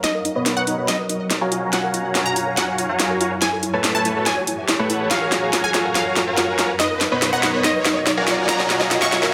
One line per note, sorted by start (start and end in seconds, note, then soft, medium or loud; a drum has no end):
0.00 1.50 B2 medium
0.00 3.38 F#3 medium
0.00 0.10 D#4 loud
0.00 3.38 A#4 medium
0.00 0.17 D#5 loud
0.00 1.50 D#5 medium
0.00 snare medium
0.00 closed hi-hat medium
0.00 riser medium
0.15 0.23 A#4 loud
0.25 0.34 D#4 medium
0.25 closed hi-hat medium
0.36 0.54 B3 loud
0.36 0.54 B4 medium
0.36 0.41 B4 medium
0.36 0.54 C#5 medium
0.36 0.54 D#5 medium
0.36 0.54 B5 loud
0.46 0.52 D#4 medium
0.46 snare medium
0.46 closed hi-hat medium
0.57 0.75 B3 medium
0.57 0.75 B4 medium
0.57 0.75 C#5 medium
0.57 0.75 D#5 medium
0.57 0.62 D#5 medium
0.57 0.76 F#5 loud
0.57 0.75 A#5 loud
0.67 0.73 D#4 medium
0.67 closed hi-hat medium
0.78 0.89 B3 medium
0.78 0.81 A#4 medium
0.78 0.89 B4 medium
0.78 0.89 C#5 medium
0.78 0.89 D#5 medium
0.78 0.89 B5 medium
0.88 0.92 D#4 medium
0.88 1.64 D#5 medium
0.88 snare medium
0.88 closed hi-hat medium
0.99 1.07 B4 loud
1.09 1.18 D#4 medium
1.09 closed hi-hat medium
1.20 1.29 D#5 medium
1.30 1.36 D#4 medium
1.30 snare medium
1.30 closed hi-hat medium
1.41 1.70 F#4 medium
1.41 1.47 A#4 medium
1.41 1.70 C#5 medium
1.41 1.70 F5 medium
1.41 1.70 G#5 medium
1.41 1.70 A#5 medium
1.52 3.40 F#2 medium
1.52 1.57 F4 medium
1.52 3.40 C#5 medium
1.52 closed hi-hat medium
1.62 1.68 C#5 medium
1.73 1.79 F4 loud
1.73 2.87 F#4 medium
1.73 2.87 C#5 medium
1.73 2.87 F5 medium
1.73 1.86 F#5 loud
1.73 2.87 G#5 medium
1.73 2.87 A#5 medium
1.73 snare medium
1.73 closed hi-hat medium
1.84 1.92 A#4 loud
1.94 2.03 F4 medium
1.94 closed hi-hat medium
2.05 2.10 C#5 medium
2.15 2.21 F4 medium
2.15 snare medium
2.15 closed hi-hat medium
2.26 2.31 F5 medium
2.26 2.45 A#5 loud
2.36 2.42 F4 medium
2.36 closed hi-hat medium
2.47 2.50 A#4 medium
2.57 2.61 F4 medium
2.57 3.34 F#5 loud
2.57 snare medium
2.57 closed hi-hat medium
2.68 2.76 C#5 loud
2.78 2.87 F4 medium
2.78 closed hi-hat medium
2.89 3.18 F#4 medium
2.89 3.18 C#5 medium
2.89 3.18 F5 medium
2.89 2.97 F5 medium
2.89 3.18 G#5 medium
2.89 3.18 A#5 medium
3.00 3.05 F4 medium
3.00 snare medium
3.00 closed hi-hat medium
3.10 3.16 A#4 medium
3.20 3.26 F4 medium
3.20 3.32 F#4 medium
3.20 3.32 C#5 medium
3.20 3.32 F5 medium
3.20 3.32 G#5 medium
3.20 3.32 A#5 medium
3.20 closed hi-hat medium
3.31 3.37 C#5 medium
3.42 5.09 A2 medium
3.42 5.09 E3 medium
3.42 3.48 E4 medium
3.42 5.09 G#4 medium
3.42 5.09 C#5 medium
3.42 3.55 G#5 loud
3.42 snare medium
3.42 closed hi-hat medium
3.53 3.61 A4 loud
3.63 3.72 E4 medium
3.63 closed hi-hat medium
3.73 3.92 A3 medium
3.73 3.92 A4 medium
3.73 3.92 B4 medium
3.73 3.92 C#5 medium
3.73 3.79 C#5 medium
3.73 3.92 A5 loud
3.84 3.90 E4 medium
3.84 snare medium
3.84 closed hi-hat medium
3.95 4.13 A3 medium
3.95 4.13 A4 medium
3.95 4.13 B4 medium
3.95 4.13 C#5 medium
3.95 4.00 E5 medium
3.95 4.13 G#5 loud
3.95 4.14 A5 loud
4.05 4.11 E4 medium
4.05 closed hi-hat medium
4.16 4.27 A3 medium
4.16 4.27 A4 medium
4.16 4.19 A4 medium
4.16 4.27 B4 medium
4.16 4.27 C#5 medium
4.16 4.27 A5 medium
4.26 4.30 E4 medium
4.26 5.02 G#5 loud
4.26 snare medium
4.26 closed hi-hat medium
4.37 4.45 C#5 loud
4.47 4.56 E4 medium
4.47 closed hi-hat medium
4.58 4.67 E5 medium
4.68 4.74 E4 medium
4.68 snare medium
4.68 closed hi-hat medium
4.79 5.08 A3 medium
4.79 5.08 A4 medium
4.79 4.85 A4 medium
4.79 5.08 B4 medium
4.79 5.08 C#5 medium
4.79 5.08 F#5 medium
4.90 4.95 E4 medium
4.90 closed hi-hat medium
5.00 5.06 C#5 medium
5.11 6.78 F#2 medium
5.11 8.25 F#3 medium
5.11 5.17 F4 loud
5.11 6.25 F#4 medium
5.11 9.34 A#4 medium
5.11 6.25 C#5 medium
5.11 5.24 F5 loud
5.11 6.25 F5 medium
5.11 6.78 F5 medium
5.11 6.25 G#5 medium
5.11 6.25 A#5 medium
5.11 snare medium
5.11 closed hi-hat medium
5.22 5.30 A#4 loud
5.32 5.41 F4 medium
5.32 snare medium
5.32 closed hi-hat medium
5.43 5.48 C#5 medium
5.53 5.59 F4 medium
5.53 snare medium
5.53 closed hi-hat medium
5.64 5.69 F5 medium
5.64 5.83 G#5 loud
5.74 5.80 F4 medium
5.74 snare medium
5.74 closed hi-hat medium
5.85 5.88 A#4 medium
5.95 5.99 F4 medium
5.95 6.71 F5 medium
5.95 snare medium
5.95 closed hi-hat medium
6.06 6.14 C#5 loud
6.16 6.25 F4 medium
6.16 snare medium
6.16 closed hi-hat medium
6.27 6.56 F#4 medium
6.27 6.56 C#5 medium
6.27 6.56 F5 medium
6.27 6.36 F5 medium
6.27 6.56 G#5 medium
6.27 6.56 A#5 medium
6.37 6.43 F4 medium
6.37 snare medium
6.37 closed hi-hat medium
6.48 6.54 A#4 medium
6.59 6.65 F4 medium
6.59 6.70 F#4 medium
6.59 6.70 C#5 medium
6.59 6.70 F5 medium
6.59 6.70 G#5 medium
6.59 6.70 A#5 loud
6.59 snare medium
6.59 closed hi-hat medium
6.70 6.73 A#4 medium
6.80 8.26 B2 medium
6.80 6.86 D#4 loud
6.80 6.93 D#5 loud
6.80 8.26 D#5 medium
6.80 snare medium
6.80 closed hi-hat medium
6.91 6.99 A#4 loud
7.01 7.10 D#4 medium
7.01 snare medium
7.01 closed hi-hat medium
7.12 7.30 B3 medium
7.12 7.30 B4 medium
7.12 7.17 B4 medium
7.12 7.30 C#5 medium
7.12 7.30 D#5 medium
7.12 7.30 B5 loud
7.22 7.28 D#4 medium
7.22 snare medium
7.22 closed hi-hat medium
7.33 7.51 B3 medium
7.33 7.51 B4 medium
7.33 7.51 C#5 medium
7.33 7.51 D#5 medium
7.33 7.38 D#5 medium
7.33 7.52 F#5 loud
7.33 7.51 A#5 loud
7.43 7.49 D#4 medium
7.43 snare medium
7.43 closed hi-hat medium
7.54 7.65 B3 medium
7.54 7.57 A#4 medium
7.54 7.65 B4 medium
7.54 7.65 C#5 medium
7.54 7.65 D#5 medium
7.54 7.65 B5 medium
7.64 7.68 D#4 medium
7.64 8.40 D#5 medium
7.64 snare medium
7.64 closed hi-hat medium
7.75 7.83 B4 loud
7.85 7.94 D#4 medium
7.85 snare medium
7.85 closed hi-hat medium
7.96 8.05 D#5 medium
8.07 8.12 D#4 medium
8.07 snare medium
8.07 closed hi-hat medium
8.17 8.46 F#4 medium
8.17 8.23 A#4 medium
8.17 8.46 C#5 medium
8.17 8.46 F5 medium
8.17 8.46 G#5 medium
8.17 8.46 A#5 loud
8.28 9.34 F#2 medium
8.28 9.34 F#3 medium
8.28 8.33 F4 medium
8.28 9.34 F5 medium
8.28 snare medium
8.28 closed hi-hat medium
8.39 8.42 A#4 medium
8.49 8.55 F4 loud
8.49 9.34 F#4 medium
8.49 9.34 C#5 medium
8.49 9.34 F5 medium
8.49 9.34 G#5 medium
8.49 8.62 A#5 loud
8.49 9.34 A#5 loud
8.49 snare loud
8.49 closed hi-hat medium
8.60 8.68 A#4 loud
8.60 snare medium
8.70 8.79 F4 medium
8.70 snare medium
8.70 closed hi-hat medium
8.81 8.86 C#5 medium
8.81 snare medium
8.91 8.97 F4 medium
8.91 snare loud
8.91 closed hi-hat medium
9.02 9.07 F5 medium
9.02 9.21 C#6 loud
9.02 snare medium
9.12 9.18 F4 medium
9.12 snare medium
9.12 closed hi-hat medium
9.23 9.26 A#4 medium
9.23 snare medium